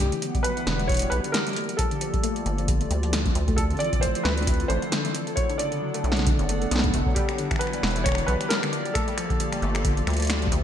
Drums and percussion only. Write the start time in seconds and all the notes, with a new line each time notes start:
0.03 kick
0.06 kick
0.09 kick, closed hi-hat
0.22 closed hi-hat
0.35 kick, closed hi-hat
0.44 closed hi-hat
0.57 closed hi-hat
0.67 snare, closed hi-hat
0.79 closed hi-hat
0.89 kick, closed hi-hat
0.92 closed hi-hat
0.94 closed hi-hat
0.97 closed hi-hat
0.99 closed hi-hat
1.02 closed hi-hat
1.12 closed hi-hat
1.24 closed hi-hat
1.34 snare, closed hi-hat
1.47 closed hi-hat
1.49 closed hi-hat
1.53 closed hi-hat
1.56 closed hi-hat
1.61 closed hi-hat
1.64 closed hi-hat
1.69 closed hi-hat
1.79 kick, closed hi-hat
1.91 closed hi-hat
2.01 closed hi-hat
2.14 kick, closed hi-hat
2.24 closed hi-hat
2.36 closed hi-hat
2.46 closed hi-hat
2.58 closed hi-hat
2.68 kick, closed hi-hat
2.81 closed hi-hat
2.91 closed hi-hat
3.03 closed hi-hat
3.13 snare, closed hi-hat
3.26 kick, closed hi-hat
3.35 closed hi-hat
3.48 kick, closed hi-hat
3.58 kick, closed hi-hat
3.70 closed hi-hat
3.77 closed hi-hat
3.80 closed hi-hat
3.84 closed hi-hat
3.93 kick, closed hi-hat
3.99 kick, closed hi-hat
4.07 kick
4.15 closed hi-hat
4.25 snare, closed hi-hat
4.37 closed hi-hat
4.42 closed hi-hat
4.47 kick, closed hi-hat
4.54 closed hi-hat
4.60 closed hi-hat
4.70 closed hi-hat
4.82 closed hi-hat
4.92 snare, closed hi-hat
5.05 closed hi-hat
5.15 closed hi-hat
5.27 closed hi-hat
5.37 kick, closed hi-hat
5.50 closed hi-hat
5.59 closed hi-hat
5.72 closed hi-hat
5.94 closed hi-hat
6.04 closed hi-hat
6.12 snare
6.17 snare, closed hi-hat
6.27 kick, closed hi-hat
6.39 closed hi-hat
6.49 closed hi-hat
6.62 closed hi-hat
6.71 snare, closed hi-hat
6.76 snare
6.79 snare
6.84 kick, closed hi-hat
6.86 kick
6.90 kick, closed hi-hat
6.94 kick
6.98 kick
7.01 kick
7.06 kick
7.16 kick, closed hi-hat
7.29 finger snap, closed hi-hat
7.38 closed hi-hat
7.51 finger snap, kick, closed hi-hat
7.56 finger snap
7.61 finger snap, closed hi-hat
7.67 finger snap
7.73 closed hi-hat
7.83 finger snap, snare, closed hi-hat
7.87 closed hi-hat
7.91 closed hi-hat
7.96 closed hi-hat
8.06 finger snap, kick, closed hi-hat
8.09 finger snap
8.12 finger snap
8.15 finger snap, closed hi-hat
8.28 closed hi-hat
8.41 finger snap, closed hi-hat
8.50 snare, closed hi-hat
8.63 finger snap, closed hi-hat
8.73 closed hi-hat
8.85 closed hi-hat
8.95 finger snap, kick, closed hi-hat
9.08 closed hi-hat
9.18 finger snap, closed hi-hat
9.30 kick, closed hi-hat
9.40 closed hi-hat
9.52 finger snap, closed hi-hat
9.62 closed hi-hat
9.75 finger snap, closed hi-hat
9.85 kick, closed hi-hat
9.97 closed hi-hat
10.07 finger snap, closed hi-hat
10.10 closed hi-hat
10.13 closed hi-hat
10.17 closed hi-hat
10.20 closed hi-hat
10.22 closed hi-hat
10.25 closed hi-hat
10.27 finger snap, snare, closed hi-hat
10.30 closed hi-hat
10.36 closed hi-hat
10.39 closed hi-hat
10.42 closed hi-hat
10.47 kick
10.52 closed hi-hat